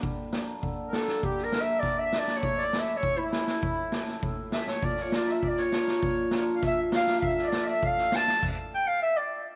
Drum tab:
CC |--------|--------|--------|--------|
SD |--o---oo|-oo-o-oo|-oo---oo|--oo--oo|
BD |o---o---|o---o---|o---o---|o---o---|

CC |--------|--------|--------|x-------|
SD |-ooo-ooo|--o-o-oo|-oo--ooo|--------|
BD |o---o---|o---o---|o---o---|o-------|